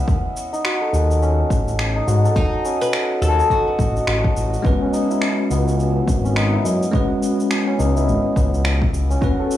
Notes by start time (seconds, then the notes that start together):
Already playing: B3 C#4 E4
0.08 D#2, kick, cabasa
0.37 cabasa
0.53 D#4, cabasa
0.64 F#4, finger snap, cabasa
0.81 A4
0.93 D#2, cabasa
1.11 cabasa
1.22 C#4, cabasa
1.50 A1, kick, cabasa
1.68 cabasa
1.79 finger snap, cabasa
1.96 D#4
2.07 G#2 F#4, cabasa
2.24 A4, cabasa
2.36 D#2 D#4, kick, cabasa
2.65 C#4, cabasa
2.81 B4, cabasa
2.93 finger snap, cabasa
3.22 D#2 A4, cabasa
3.39 D#4, cabasa
3.50 F#4, kick, cabasa
3.67 A4
3.79 A1 D#5, kick, cabasa
3.97 cabasa
4.07 A1 F#4, finger snap, cabasa
4.24 kick
4.36 A1, cabasa
4.54 cabasa
4.62 C#2 G#3 B3 C#4 F#4 B4, kick, cabasa
4.81 C#4
4.93 D#4, cabasa
5.10 E4, cabasa
5.22 finger snap, cabasa
5.50 C#2 B3, cabasa
5.68 cabasa
5.80 cabasa
6.08 G#1, kick, cabasa
6.25 C#4, cabasa
6.36 D#4, finger snap, cabasa
6.53 E4
6.65 F#2, cabasa
6.83 cabasa
6.91 C#2 G#3 B3 C#4 F#4 B4, kick, cabasa
7.23 cabasa
7.40 cabasa
7.51 finger snap, cabasa
7.67 C#4
7.79 C#2 D#4, cabasa
7.96 E4, cabasa
8.08 G#1, cabasa
8.36 C#2 B3, kick, cabasa
8.54 cabasa
8.65 finger snap, cabasa
8.82 kick
8.94 cabasa
9.10 C#4, cabasa
9.21 D#2 C#4 F#4 B4, kick, cabasa
9.39 A4
9.51 cabasa